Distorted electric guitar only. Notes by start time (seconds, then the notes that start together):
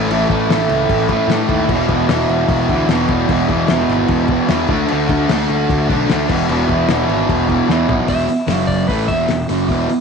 Already playing: E3 A3
0.08 A2 E3
0.13 A3
0.29 A3
0.33 E3
0.48 A2 E3
0.53 A3
1.09 A3
1.14 E3
1.29 A2 E3
1.33 A3
1.49 A3
1.54 E3
1.69 E2 B2
1.73 E3
1.88 E3
1.93 B2
2.08 E2 B2
2.13 E3
2.68 E3
2.73 B2
2.88 E2 B2
2.93 E3
3.09 E3
3.13 B2
3.26 E2 B2
3.32 E3
3.48 E3
3.53 B2
3.68 E2 B2
3.73 E3
4.28 E3
4.33 B2
4.47 E2 B2
4.52 E3
4.68 A3 D4
4.73 D3
4.87 D3 A3
4.92 D4
5.07 D4
5.12 A3
5.27 D3 A3
5.32 D4
5.87 D4
5.92 A3
6.07 D3 A3
6.12 D4
6.28 B2 E3
6.32 E2
6.48 E2 B2
6.53 E3
6.67 E3
6.72 B2
6.89 E2 B2
6.94 E3
7.48 E3
7.53 B2
7.67 E2 B2
7.72 E3
7.88 E3
7.93 B2
8.08 E2 B2 E3
8.28 muted distorted electric guitar stroke
8.47 F#2 C#3 F#3
8.88 A2 E3 A3
9.08 E2 B2 E3
9.28 E2 B2
9.48 F#2 C#3 F#3
9.69 E2 B2 E3
9.88 muted distorted electric guitar stroke